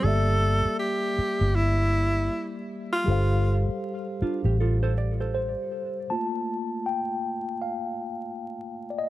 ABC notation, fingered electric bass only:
X:1
M:4/4
L:1/16
Q:"Swing 16ths" 1/4=79
K:Gm
V:1 name="Fingered electric bass" clef=bass
G,,,3 z4 G,,,4- G,,, z4 | G,,,3 z4 A,,,6 z3 | z16 |]